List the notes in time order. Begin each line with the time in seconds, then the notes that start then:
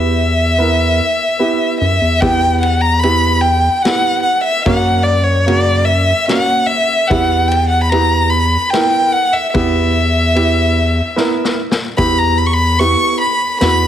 Already playing: E2 B3 E4 G4 E5
0.58 B3 E4 A#4
1.39 B3 E4 G4
1.81 F#2 E5
2.02 E2
2.21 E2 B3 E4 G4 G5, kick, ride
2.61 F#5, ride
2.81 A#5
3.00 B3 E4 B5, ride
3.04 G4
3.41 G5
3.76 G5
3.82 B3 E4 G4 F#5, snare, ride
4.23 F#5
4.44 E5
4.62 F#2 A#3 C#4 F5, kick, ride
4.67 F#4
4.79 F#5
5.03 D5
5.24 C#5
5.45 C#3 A#3 F#4 C#5, ride
5.56 D5
5.85 E5
6.26 A#3 C#4 F#4 F#5, snare, ride
6.67 E5
7.07 E2 B3 E4 G4 F#5, kick, ride
7.48 G5, ride
7.69 F#5
7.83 B5
7.89 B3 E4 G4 A#5, ride
8.30 B5
8.70 B3 E4 A#4 G5, snare, ride
9.13 F#5
9.33 E5
9.54 E2 B3 E4 G4 E5, kick, ride
10.35 B3 E4 G4, ride
11.16 B3 E4 A#4, snare
11.44 snare
11.71 snare
11.97 E2 B3 E4 G4 B5, kick, closed hi-hat
12.18 A#5
12.38 B5
12.47 C#6
12.53 B5
12.79 B3 E4 G4 C#6, closed hi-hat
13.21 B5
13.61 E2 B3 E4 F#4 B5, snare, closed hi-hat